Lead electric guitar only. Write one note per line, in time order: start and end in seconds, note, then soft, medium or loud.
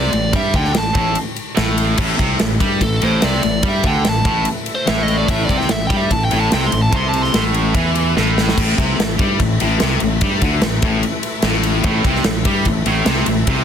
0.00 0.35 D5 medium
0.36 0.55 E5 medium
0.56 0.75 G5 loud
0.78 1.17 A5 medium
2.83 3.02 A4 loud
3.05 3.24 C5 loud
3.24 3.64 D5 medium
3.68 3.87 E5 loud
3.87 4.06 G5 loud
4.09 4.47 A5 medium
4.75 4.88 C5 loud
4.87 5.03 E5 medium
5.03 5.16 D#5 medium
5.17 5.30 D5 medium
5.30 5.44 E5 loud
5.44 5.57 D5 loud
5.58 5.71 G5 loud
5.71 5.84 E5 medium
5.87 5.99 G5 medium
5.97 6.11 E5 medium
6.12 6.24 A5 loud
6.25 6.38 G5 medium
6.40 6.53 A5 loud
6.54 6.67 G5 medium
6.66 6.80 C6 medium
6.82 6.96 A5 medium
6.96 7.08 C6 loud
7.09 7.22 A5 medium
7.23 7.42 C6 loud